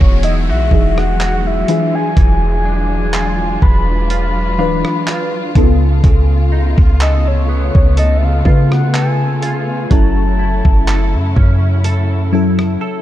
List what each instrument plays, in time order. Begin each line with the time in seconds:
Already playing: fm electric piano E3 D#4 F#4 G#4, clean electric guitar E3 G#3 D#4 F#4, string section F#3 G#3 B3 F#4, synth pluck B5, downlifter
0.01 808-style bass E1, soft synth lead C#5, kick
0.23 clean electric guitar E4, soft synth lead D#5, closed hi-hat
0.49 808-style bass B1, clean electric guitar F#4, soft synth lead E5
0.71 808-style bass E1, fm electric piano E3 D#4 F#4 G#4, kick
0.98 soft synth lead F#5, cross-stick
1.20 clean electric guitar F#4, clap, closed hi-hat
1.47 soft synth lead E5
1.68 fm electric piano E3 D4 F4 G#4, clean electric guitar E3, string section D4 F4, closed hi-hat
1.95 soft synth lead G#5
2.17 808-style bass E1, clean electric guitar E3, soft synth lead G#5, kick, closed hi-hat
2.65 clean electric guitar D4
3.13 clean electric guitar F4, clap, closed hi-hat
3.62 808-style bass E1, clean electric guitar G#3, soft synth lead B5, kick
4.10 clean electric guitar F4, soft synth lead B5, closed hi-hat
4.58 808-style bass D1, fm electric piano E3 D4 F4 B4, clean electric guitar D4, synth pluck F5
4.85 cross-stick
5.07 clean electric guitar F4, clap, closed hi-hat
5.55 808-style bass C#2, fm electric piano C#3 B3 D#4 A4, string section C#3 A3 B3, clean electric guitar C#3, kick, closed hi-hat
5.63 fm electric piano F4
6.04 808-style bass C#2, clean electric guitar C#3, kick, closed hi-hat
6.52 clean electric guitar D#4
6.78 808-style bass C#2, clean electric guitar F4, kick
7.00 clean electric guitar A4, soft synth lead D#5, synth pluck G#5, clap, closed hi-hat
7.28 soft synth lead C#5
7.49 clean electric guitar B3
7.75 808-style bass C#2, soft synth lead C#5, kick
7.97 clean electric guitar A4, soft synth lead D#5, closed hi-hat
8.17 soft synth lead E5
8.25 soft synth lead F5
8.45 fm electric piano C#3 B3 F4 B4, 808-style bass C#3, clean electric guitar F4, kick
8.72 soft synth lead F#5, cross-stick
8.94 clean electric guitar A4, soft synth lead G#5, clap, closed hi-hat
9.42 clean electric guitar F4, soft synth lead G#5, closed hi-hat
9.91 808-style bass F#1, string section C#3 F#3 E4, fm electric piano F#3 C#4 E4 A4, clean electric guitar F#3, soft synth lead A5, kick, closed hi-hat
10.39 clean electric guitar E4
10.65 808-style bass F#1, kick
10.88 clean electric guitar A4, clap, closed hi-hat
11.14 808-style bass F#2
11.36 808-style bass F#2, clean electric guitar C#4, kick
11.84 clean electric guitar A4, closed hi-hat
12.32 fm electric piano F#3 C#4 E4 A4, clean electric guitar E4
12.59 cross-stick
12.81 clean electric guitar A4